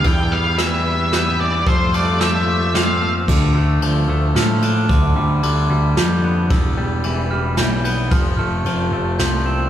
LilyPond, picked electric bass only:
\new Staff \with { instrumentName = "Picked electric bass" } { \clef bass \time 3/4 \key f \lydian \tempo 4 = 112 e,2. | f,2. | d,8 d,8 d,8 d,8 a,4 | d,8 d,8 d,8 d,8 f,4 |
e,,8 e,,8 e,,8 e,,8 b,,4 | f,,8 f,,8 f,,8 f,,8 c,4 | }